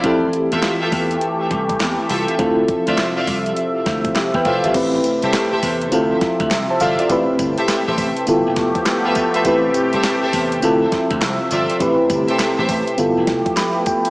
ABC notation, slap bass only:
X:1
M:4/4
L:1/16
Q:"Swing 16ths" 1/4=102
K:Am
V:1 name="Slap bass" clef=bass
F,,2 z E,, z2 E,,2 z2 C,,2 E,, z C,, z | D,,2 z D,, z2 C,,2 z2 D,,2 z E,, F,,, G,,, | A,,,2 z C,, z2 E,,2 D,,2 z D,, C,, z G,,, z | A,,, z G,,, z2 A,,,2 z G,,, F,,,2 z4 z |
A,,,2 z C,, z2 E,,2 D,,2 z D,, C,, z G,,, z | A,,, z G,,, z2 A,,,2 z G,,, F,,,2 z4 z |]